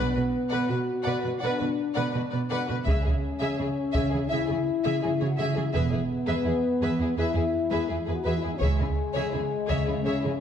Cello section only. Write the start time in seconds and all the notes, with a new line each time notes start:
0.16 B2
0.53 B2
0.70 B2
1.06 B2
1.24 B2
1.42 B2
1.61 B2
1.97 B2
2.15 B2
2.33 B2
2.51 B2
2.69 B2
2.87 C#3
3.06 C#3
3.41 C#3
3.60 C#3
3.96 C#3
4.13 C#3
4.32 C#3
4.50 C#3
4.85 C#3
5.03 C#3
5.21 C#3
5.38 C#3
5.56 C#3
5.74 E2
5.92 E2
6.28 E2
6.45 E2
6.81 E2
7.00 E2
7.17 E2
7.35 E2
7.71 E2
7.90 E2
8.08 E2
8.26 E2
8.45 E2
8.62 C#3
8.80 C#3
9.17 C#3
9.35 C#3
9.70 C#3
9.88 C#3
10.06 C#3
10.24 C#3